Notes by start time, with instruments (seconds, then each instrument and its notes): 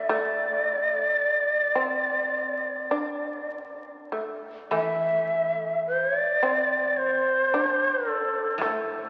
Already playing: koto D3
0.08 shamisen A3, shakuhachi D5
1.75 shamisen C4
2.91 shamisen D4
4.12 shamisen A3
4.71 koto E3, shamisen A3, shakuhachi E5
5.87 shakuhachi C5
6.06 shakuhachi C#5
6.19 shakuhachi D5
6.43 shamisen C4
6.97 shakuhachi C5
7.54 shamisen D4
8.07 shakuhachi A4
8.58 koto A2, shamisen A3, shakuhachi A4